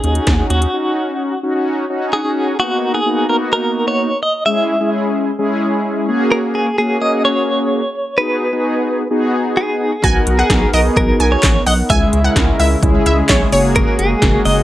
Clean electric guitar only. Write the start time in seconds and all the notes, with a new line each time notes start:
Already playing: G#4
0.50 F#4
2.13 G#4
2.60 F#4
2.95 G#4
3.29 A#4
3.53 A#4
3.88 C#5
4.23 D#5
4.46 E5
6.32 A#4
6.55 G#4
6.78 G#4
7.02 D#5
7.25 C#5
8.18 B4
9.57 G#4
10.04 F#4
10.39 G#4
10.74 A#4
10.97 A#4
11.32 C#5
11.67 D#5
11.90 E5
13.76 A#4
13.99 G#4
14.45 D#5